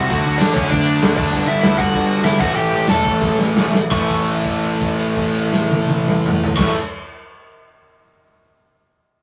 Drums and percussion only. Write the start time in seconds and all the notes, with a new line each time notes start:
0.10 kick, open hi-hat
0.41 snare, open hi-hat
0.56 kick
0.72 kick, open hi-hat
1.03 snare, open hi-hat
1.18 kick
1.33 kick, open hi-hat
1.63 snare, open hi-hat
1.79 kick
1.94 kick, open hi-hat
2.24 snare, open hi-hat
2.40 kick
2.56 open hi-hat
2.88 snare, open hi-hat
3.05 kick
3.21 kick, snare
3.39 snare
3.57 snare
3.74 snare
3.92 kick, crash
4.10 kick, crash
4.27 crash
4.45 kick, crash
4.64 crash
4.81 kick, crash
4.99 crash
5.17 kick, crash
5.35 crash
5.53 snare
5.71 high tom
5.89 high tom
6.08 mid tom
6.26 mid tom
6.44 floor tom
6.58 kick, snare, crash